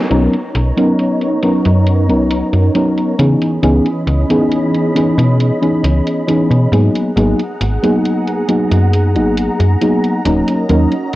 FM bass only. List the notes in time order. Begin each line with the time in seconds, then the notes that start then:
0.11 B1
0.55 B1
1.65 F#2
2.09 B1
2.53 F#2
3.19 C#3
3.63 C#2
4.07 C#2
5.18 B2
5.84 C#2
6.50 B2
6.72 G#2
7.16 G#1
7.61 G#1
8.71 F#2
9.16 G#1
9.60 F#2
10.25 D#1
10.70 D#2